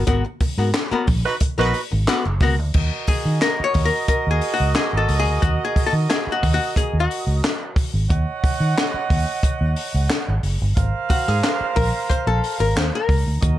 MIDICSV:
0, 0, Header, 1, 7, 480
1, 0, Start_track
1, 0, Tempo, 667408
1, 60, Time_signature, 4, 2, 24, 8
1, 9771, End_track
2, 0, Start_track
2, 0, Title_t, "Horn section"
2, 0, Program_c, 0, 61
2, 897, Note_on_c, 0, 71, 104
2, 898, Note_on_c, 0, 63, 87
2, 898, Note_on_c, 0, 66, 88
2, 973, Note_off_c, 0, 71, 0
2, 974, Note_off_c, 0, 63, 0
2, 974, Note_off_c, 0, 66, 0
2, 1140, Note_on_c, 0, 66, 95
2, 1143, Note_on_c, 0, 63, 101
2, 1143, Note_on_c, 0, 71, 115
2, 1297, Note_off_c, 0, 66, 0
2, 1299, Note_off_c, 0, 63, 0
2, 1299, Note_off_c, 0, 71, 0
2, 1973, Note_on_c, 0, 66, 73
2, 1974, Note_on_c, 0, 70, 75
2, 1977, Note_on_c, 0, 75, 79
2, 5553, Note_off_c, 0, 66, 0
2, 5553, Note_off_c, 0, 70, 0
2, 5555, Note_off_c, 0, 75, 0
2, 5818, Note_on_c, 0, 75, 81
2, 5820, Note_on_c, 0, 73, 75
2, 5820, Note_on_c, 0, 78, 78
2, 7471, Note_off_c, 0, 73, 0
2, 7471, Note_off_c, 0, 75, 0
2, 7472, Note_off_c, 0, 78, 0
2, 7738, Note_on_c, 0, 77, 91
2, 7740, Note_on_c, 0, 72, 82
2, 7741, Note_on_c, 0, 70, 82
2, 9385, Note_off_c, 0, 77, 0
2, 9386, Note_off_c, 0, 72, 0
2, 9387, Note_off_c, 0, 70, 0
2, 9649, Note_on_c, 0, 66, 87
2, 9650, Note_on_c, 0, 70, 76
2, 9650, Note_on_c, 0, 75, 84
2, 9771, Note_off_c, 0, 66, 0
2, 9771, Note_off_c, 0, 70, 0
2, 9771, Note_off_c, 0, 75, 0
2, 9771, End_track
3, 0, Start_track
3, 0, Title_t, "Hollow-body jazz guitar"
3, 0, Program_c, 1, 26
3, 49, Note_on_c, 1, 59, 82
3, 52, Note_on_c, 1, 66, 87
3, 57, Note_on_c, 1, 70, 82
3, 165, Note_off_c, 1, 59, 0
3, 166, Note_off_c, 1, 66, 0
3, 169, Note_off_c, 1, 70, 0
3, 418, Note_on_c, 1, 70, 56
3, 421, Note_on_c, 1, 66, 52
3, 425, Note_on_c, 1, 59, 47
3, 500, Note_off_c, 1, 70, 0
3, 501, Note_off_c, 1, 66, 0
3, 503, Note_off_c, 1, 59, 0
3, 657, Note_on_c, 1, 70, 86
3, 662, Note_on_c, 1, 66, 77
3, 665, Note_on_c, 1, 59, 79
3, 761, Note_off_c, 1, 70, 0
3, 763, Note_off_c, 1, 66, 0
3, 765, Note_off_c, 1, 59, 0
3, 1135, Note_on_c, 1, 70, 80
3, 1141, Note_on_c, 1, 66, 75
3, 1143, Note_on_c, 1, 59, 71
3, 1238, Note_off_c, 1, 59, 0
3, 1240, Note_off_c, 1, 70, 0
3, 1243, Note_off_c, 1, 66, 0
3, 1494, Note_on_c, 1, 59, 84
3, 1498, Note_on_c, 1, 66, 98
3, 1501, Note_on_c, 1, 71, 101
3, 1609, Note_off_c, 1, 59, 0
3, 1611, Note_off_c, 1, 66, 0
3, 1613, Note_off_c, 1, 71, 0
3, 1739, Note_on_c, 1, 59, 74
3, 1744, Note_on_c, 1, 66, 90
3, 1747, Note_on_c, 1, 70, 83
3, 1828, Note_off_c, 1, 59, 0
3, 1831, Note_off_c, 1, 66, 0
3, 1832, Note_off_c, 1, 70, 0
3, 2217, Note_on_c, 1, 68, 96
3, 2455, Note_off_c, 1, 68, 0
3, 2458, Note_on_c, 1, 70, 96
3, 2617, Note_on_c, 1, 73, 108
3, 2627, Note_off_c, 1, 70, 0
3, 2772, Note_on_c, 1, 70, 96
3, 2787, Note_off_c, 1, 73, 0
3, 2928, Note_off_c, 1, 70, 0
3, 2938, Note_on_c, 1, 70, 90
3, 3095, Note_off_c, 1, 70, 0
3, 3098, Note_on_c, 1, 68, 95
3, 3262, Note_on_c, 1, 66, 81
3, 3267, Note_off_c, 1, 68, 0
3, 3421, Note_on_c, 1, 68, 99
3, 3430, Note_off_c, 1, 66, 0
3, 3573, Note_off_c, 1, 68, 0
3, 3577, Note_on_c, 1, 69, 92
3, 3731, Note_off_c, 1, 69, 0
3, 3736, Note_on_c, 1, 68, 106
3, 3899, Note_on_c, 1, 66, 80
3, 3907, Note_off_c, 1, 68, 0
3, 4052, Note_off_c, 1, 66, 0
3, 4060, Note_on_c, 1, 68, 91
3, 4215, Note_off_c, 1, 68, 0
3, 4218, Note_on_c, 1, 69, 95
3, 4262, Note_off_c, 1, 69, 0
3, 4384, Note_on_c, 1, 68, 92
3, 4546, Note_on_c, 1, 66, 86
3, 4551, Note_off_c, 1, 68, 0
3, 4695, Note_off_c, 1, 66, 0
3, 4704, Note_on_c, 1, 66, 86
3, 4854, Note_off_c, 1, 66, 0
3, 4870, Note_on_c, 1, 68, 84
3, 5018, Note_off_c, 1, 68, 0
3, 5035, Note_on_c, 1, 66, 86
3, 5783, Note_off_c, 1, 66, 0
3, 5783, Note_on_c, 1, 65, 86
3, 6202, Note_off_c, 1, 65, 0
3, 7983, Note_on_c, 1, 66, 90
3, 8114, Note_off_c, 1, 66, 0
3, 8114, Note_on_c, 1, 68, 86
3, 8458, Note_on_c, 1, 70, 100
3, 8463, Note_off_c, 1, 68, 0
3, 8696, Note_off_c, 1, 70, 0
3, 8699, Note_on_c, 1, 72, 96
3, 8823, Note_off_c, 1, 72, 0
3, 8826, Note_on_c, 1, 69, 94
3, 9060, Note_off_c, 1, 69, 0
3, 9063, Note_on_c, 1, 70, 92
3, 9179, Note_off_c, 1, 70, 0
3, 9179, Note_on_c, 1, 72, 107
3, 9309, Note_off_c, 1, 72, 0
3, 9316, Note_on_c, 1, 70, 96
3, 9771, Note_off_c, 1, 70, 0
3, 9771, End_track
4, 0, Start_track
4, 0, Title_t, "Fingered electric bass"
4, 0, Program_c, 2, 33
4, 52, Note_on_c, 2, 32, 102
4, 157, Note_off_c, 2, 32, 0
4, 415, Note_on_c, 2, 44, 93
4, 510, Note_off_c, 2, 44, 0
4, 775, Note_on_c, 2, 34, 105
4, 880, Note_off_c, 2, 34, 0
4, 1139, Note_on_c, 2, 34, 85
4, 1233, Note_off_c, 2, 34, 0
4, 1385, Note_on_c, 2, 32, 102
4, 1478, Note_off_c, 2, 32, 0
4, 1622, Note_on_c, 2, 30, 88
4, 1716, Note_off_c, 2, 30, 0
4, 1732, Note_on_c, 2, 37, 85
4, 1863, Note_off_c, 2, 37, 0
4, 1863, Note_on_c, 2, 38, 92
4, 1957, Note_off_c, 2, 38, 0
4, 1976, Note_on_c, 2, 39, 96
4, 2081, Note_off_c, 2, 39, 0
4, 2340, Note_on_c, 2, 51, 85
4, 2435, Note_off_c, 2, 51, 0
4, 2697, Note_on_c, 2, 39, 93
4, 2802, Note_off_c, 2, 39, 0
4, 3070, Note_on_c, 2, 39, 77
4, 3161, Note_off_c, 2, 39, 0
4, 3309, Note_on_c, 2, 37, 84
4, 3401, Note_off_c, 2, 37, 0
4, 3546, Note_on_c, 2, 32, 77
4, 3639, Note_off_c, 2, 32, 0
4, 3659, Note_on_c, 2, 37, 88
4, 3786, Note_off_c, 2, 37, 0
4, 3786, Note_on_c, 2, 38, 84
4, 3879, Note_off_c, 2, 38, 0
4, 3903, Note_on_c, 2, 39, 100
4, 4006, Note_off_c, 2, 39, 0
4, 4264, Note_on_c, 2, 51, 91
4, 4358, Note_off_c, 2, 51, 0
4, 4623, Note_on_c, 2, 39, 107
4, 4726, Note_off_c, 2, 39, 0
4, 4987, Note_on_c, 2, 39, 85
4, 5080, Note_off_c, 2, 39, 0
4, 5227, Note_on_c, 2, 37, 81
4, 5320, Note_off_c, 2, 37, 0
4, 5709, Note_on_c, 2, 32, 84
4, 5801, Note_off_c, 2, 32, 0
4, 5827, Note_on_c, 2, 39, 107
4, 5929, Note_off_c, 2, 39, 0
4, 6188, Note_on_c, 2, 51, 92
4, 6280, Note_off_c, 2, 51, 0
4, 6547, Note_on_c, 2, 39, 87
4, 6648, Note_off_c, 2, 39, 0
4, 6911, Note_on_c, 2, 39, 85
4, 7001, Note_off_c, 2, 39, 0
4, 7152, Note_on_c, 2, 37, 91
4, 7242, Note_off_c, 2, 37, 0
4, 7396, Note_on_c, 2, 32, 87
4, 7484, Note_off_c, 2, 32, 0
4, 7502, Note_on_c, 2, 30, 87
4, 7604, Note_off_c, 2, 30, 0
4, 7634, Note_on_c, 2, 31, 101
4, 7723, Note_off_c, 2, 31, 0
4, 7745, Note_on_c, 2, 32, 112
4, 7845, Note_off_c, 2, 32, 0
4, 8114, Note_on_c, 2, 44, 90
4, 8202, Note_off_c, 2, 44, 0
4, 8463, Note_on_c, 2, 34, 97
4, 8563, Note_off_c, 2, 34, 0
4, 8823, Note_on_c, 2, 34, 94
4, 8914, Note_off_c, 2, 34, 0
4, 9061, Note_on_c, 2, 32, 94
4, 9152, Note_off_c, 2, 32, 0
4, 9176, Note_on_c, 2, 39, 87
4, 9278, Note_off_c, 2, 39, 0
4, 9412, Note_on_c, 2, 37, 94
4, 9515, Note_off_c, 2, 37, 0
4, 9542, Note_on_c, 2, 38, 91
4, 9632, Note_off_c, 2, 38, 0
4, 9653, Note_on_c, 2, 39, 92
4, 9755, Note_off_c, 2, 39, 0
4, 9771, End_track
5, 0, Start_track
5, 0, Title_t, "Muted fingered electric bass strokes"
5, 291, Note_on_c, 9, 29, 41
5, 363, Note_off_c, 9, 29, 0
5, 658, Note_on_c, 9, 29, 50
5, 730, Note_off_c, 9, 29, 0
5, 2213, Note_on_c, 9, 29, 47
5, 2285, Note_off_c, 9, 29, 0
5, 2588, Note_on_c, 9, 29, 52
5, 2660, Note_off_c, 9, 29, 0
5, 4143, Note_on_c, 9, 29, 44
5, 4215, Note_off_c, 9, 29, 0
5, 4509, Note_on_c, 9, 29, 44
5, 4581, Note_off_c, 9, 29, 0
5, 5584, Note_on_c, 9, 29, 46
5, 5656, Note_off_c, 9, 29, 0
5, 6069, Note_on_c, 9, 29, 47
5, 6141, Note_off_c, 9, 29, 0
5, 6430, Note_on_c, 9, 29, 46
5, 6502, Note_off_c, 9, 29, 0
5, 7979, Note_on_c, 9, 29, 43
5, 8051, Note_off_c, 9, 29, 0
5, 8347, Note_on_c, 9, 29, 48
5, 8419, Note_off_c, 9, 29, 0
5, 9771, End_track
6, 0, Start_track
6, 0, Title_t, "Muted hollow-body jazz guitar strokes"
6, 177, Note_on_c, 9, 29, 50
6, 248, Note_off_c, 9, 29, 0
6, 295, Note_on_c, 9, 29, 45
6, 367, Note_off_c, 9, 29, 0
6, 532, Note_on_c, 9, 29, 45
6, 604, Note_off_c, 9, 29, 0
6, 775, Note_on_c, 9, 29, 46
6, 847, Note_off_c, 9, 29, 0
6, 901, Note_on_c, 9, 29, 54
6, 973, Note_off_c, 9, 29, 0
6, 1014, Note_on_c, 9, 29, 37
6, 1086, Note_off_c, 9, 29, 0
6, 1247, Note_on_c, 9, 29, 37
6, 1319, Note_off_c, 9, 29, 0
6, 1378, Note_on_c, 9, 29, 46
6, 1450, Note_off_c, 9, 29, 0
6, 1621, Note_on_c, 9, 29, 60
6, 1693, Note_off_c, 9, 29, 0
6, 1861, Note_on_c, 9, 29, 41
6, 1933, Note_off_c, 9, 29, 0
6, 9771, End_track
7, 0, Start_track
7, 0, Title_t, "Drums"
7, 50, Note_on_c, 9, 42, 90
7, 55, Note_on_c, 9, 36, 107
7, 122, Note_off_c, 9, 42, 0
7, 127, Note_off_c, 9, 36, 0
7, 291, Note_on_c, 9, 46, 65
7, 293, Note_on_c, 9, 36, 93
7, 363, Note_off_c, 9, 46, 0
7, 364, Note_off_c, 9, 36, 0
7, 533, Note_on_c, 9, 38, 120
7, 533, Note_on_c, 9, 39, 99
7, 533, Note_on_c, 9, 42, 84
7, 605, Note_off_c, 9, 38, 0
7, 605, Note_off_c, 9, 39, 0
7, 605, Note_off_c, 9, 42, 0
7, 772, Note_on_c, 9, 46, 81
7, 776, Note_on_c, 9, 36, 107
7, 844, Note_off_c, 9, 46, 0
7, 848, Note_off_c, 9, 36, 0
7, 1010, Note_on_c, 9, 42, 97
7, 1014, Note_on_c, 9, 36, 89
7, 1082, Note_off_c, 9, 42, 0
7, 1086, Note_off_c, 9, 36, 0
7, 1250, Note_on_c, 9, 46, 75
7, 1322, Note_off_c, 9, 46, 0
7, 1495, Note_on_c, 9, 38, 127
7, 1495, Note_on_c, 9, 39, 109
7, 1496, Note_on_c, 9, 42, 96
7, 1567, Note_off_c, 9, 38, 0
7, 1567, Note_off_c, 9, 39, 0
7, 1568, Note_off_c, 9, 42, 0
7, 1729, Note_on_c, 9, 46, 64
7, 1731, Note_on_c, 9, 36, 110
7, 1801, Note_off_c, 9, 46, 0
7, 1803, Note_off_c, 9, 36, 0
7, 1970, Note_on_c, 9, 49, 92
7, 1975, Note_on_c, 9, 36, 100
7, 2042, Note_off_c, 9, 49, 0
7, 2047, Note_off_c, 9, 36, 0
7, 2210, Note_on_c, 9, 46, 69
7, 2215, Note_on_c, 9, 36, 96
7, 2282, Note_off_c, 9, 46, 0
7, 2287, Note_off_c, 9, 36, 0
7, 2457, Note_on_c, 9, 38, 100
7, 2457, Note_on_c, 9, 39, 103
7, 2457, Note_on_c, 9, 42, 80
7, 2529, Note_off_c, 9, 38, 0
7, 2529, Note_off_c, 9, 39, 0
7, 2529, Note_off_c, 9, 42, 0
7, 2691, Note_on_c, 9, 46, 86
7, 2698, Note_on_c, 9, 36, 94
7, 2763, Note_off_c, 9, 46, 0
7, 2770, Note_off_c, 9, 36, 0
7, 2937, Note_on_c, 9, 36, 91
7, 2937, Note_on_c, 9, 42, 93
7, 3009, Note_off_c, 9, 36, 0
7, 3009, Note_off_c, 9, 42, 0
7, 3174, Note_on_c, 9, 46, 74
7, 3246, Note_off_c, 9, 46, 0
7, 3418, Note_on_c, 9, 38, 126
7, 3418, Note_on_c, 9, 39, 105
7, 3420, Note_on_c, 9, 42, 88
7, 3490, Note_off_c, 9, 38, 0
7, 3490, Note_off_c, 9, 39, 0
7, 3492, Note_off_c, 9, 42, 0
7, 3658, Note_on_c, 9, 46, 70
7, 3730, Note_off_c, 9, 46, 0
7, 3903, Note_on_c, 9, 36, 110
7, 3904, Note_on_c, 9, 42, 88
7, 3975, Note_off_c, 9, 36, 0
7, 3976, Note_off_c, 9, 42, 0
7, 4144, Note_on_c, 9, 36, 103
7, 4149, Note_on_c, 9, 46, 65
7, 4215, Note_off_c, 9, 36, 0
7, 4221, Note_off_c, 9, 46, 0
7, 4391, Note_on_c, 9, 38, 107
7, 4391, Note_on_c, 9, 39, 102
7, 4391, Note_on_c, 9, 42, 78
7, 4463, Note_off_c, 9, 38, 0
7, 4463, Note_off_c, 9, 39, 0
7, 4463, Note_off_c, 9, 42, 0
7, 4626, Note_on_c, 9, 36, 100
7, 4626, Note_on_c, 9, 46, 86
7, 4697, Note_off_c, 9, 36, 0
7, 4698, Note_off_c, 9, 46, 0
7, 4864, Note_on_c, 9, 36, 91
7, 4869, Note_on_c, 9, 42, 103
7, 4936, Note_off_c, 9, 36, 0
7, 4941, Note_off_c, 9, 42, 0
7, 5113, Note_on_c, 9, 46, 68
7, 5185, Note_off_c, 9, 46, 0
7, 5353, Note_on_c, 9, 38, 127
7, 5353, Note_on_c, 9, 39, 105
7, 5354, Note_on_c, 9, 42, 90
7, 5425, Note_off_c, 9, 38, 0
7, 5425, Note_off_c, 9, 39, 0
7, 5426, Note_off_c, 9, 42, 0
7, 5582, Note_on_c, 9, 36, 98
7, 5590, Note_on_c, 9, 46, 66
7, 5654, Note_off_c, 9, 36, 0
7, 5662, Note_off_c, 9, 46, 0
7, 5828, Note_on_c, 9, 36, 111
7, 5829, Note_on_c, 9, 42, 78
7, 5900, Note_off_c, 9, 36, 0
7, 5901, Note_off_c, 9, 42, 0
7, 6068, Note_on_c, 9, 36, 102
7, 6074, Note_on_c, 9, 46, 61
7, 6140, Note_off_c, 9, 36, 0
7, 6146, Note_off_c, 9, 46, 0
7, 6314, Note_on_c, 9, 38, 116
7, 6314, Note_on_c, 9, 39, 88
7, 6314, Note_on_c, 9, 42, 79
7, 6386, Note_off_c, 9, 38, 0
7, 6386, Note_off_c, 9, 39, 0
7, 6386, Note_off_c, 9, 42, 0
7, 6547, Note_on_c, 9, 36, 102
7, 6547, Note_on_c, 9, 46, 81
7, 6619, Note_off_c, 9, 36, 0
7, 6619, Note_off_c, 9, 46, 0
7, 6784, Note_on_c, 9, 36, 97
7, 6788, Note_on_c, 9, 42, 92
7, 6856, Note_off_c, 9, 36, 0
7, 6860, Note_off_c, 9, 42, 0
7, 7022, Note_on_c, 9, 46, 76
7, 7094, Note_off_c, 9, 46, 0
7, 7265, Note_on_c, 9, 38, 127
7, 7265, Note_on_c, 9, 39, 104
7, 7266, Note_on_c, 9, 42, 89
7, 7337, Note_off_c, 9, 38, 0
7, 7337, Note_off_c, 9, 39, 0
7, 7338, Note_off_c, 9, 42, 0
7, 7503, Note_on_c, 9, 46, 71
7, 7575, Note_off_c, 9, 46, 0
7, 7745, Note_on_c, 9, 36, 118
7, 7746, Note_on_c, 9, 42, 93
7, 7817, Note_off_c, 9, 36, 0
7, 7818, Note_off_c, 9, 42, 0
7, 7983, Note_on_c, 9, 36, 99
7, 7984, Note_on_c, 9, 46, 66
7, 8055, Note_off_c, 9, 36, 0
7, 8056, Note_off_c, 9, 46, 0
7, 8226, Note_on_c, 9, 42, 81
7, 8227, Note_on_c, 9, 38, 99
7, 8227, Note_on_c, 9, 39, 103
7, 8298, Note_off_c, 9, 38, 0
7, 8298, Note_off_c, 9, 39, 0
7, 8298, Note_off_c, 9, 42, 0
7, 8463, Note_on_c, 9, 46, 86
7, 8465, Note_on_c, 9, 36, 100
7, 8535, Note_off_c, 9, 46, 0
7, 8537, Note_off_c, 9, 36, 0
7, 8703, Note_on_c, 9, 36, 84
7, 8709, Note_on_c, 9, 42, 112
7, 8775, Note_off_c, 9, 36, 0
7, 8781, Note_off_c, 9, 42, 0
7, 8946, Note_on_c, 9, 46, 71
7, 9017, Note_off_c, 9, 46, 0
7, 9186, Note_on_c, 9, 38, 125
7, 9186, Note_on_c, 9, 39, 117
7, 9188, Note_on_c, 9, 42, 93
7, 9258, Note_off_c, 9, 38, 0
7, 9258, Note_off_c, 9, 39, 0
7, 9260, Note_off_c, 9, 42, 0
7, 9414, Note_on_c, 9, 36, 101
7, 9420, Note_on_c, 9, 46, 71
7, 9486, Note_off_c, 9, 36, 0
7, 9492, Note_off_c, 9, 46, 0
7, 9655, Note_on_c, 9, 42, 82
7, 9656, Note_on_c, 9, 36, 107
7, 9727, Note_off_c, 9, 36, 0
7, 9727, Note_off_c, 9, 42, 0
7, 9771, End_track
0, 0, End_of_file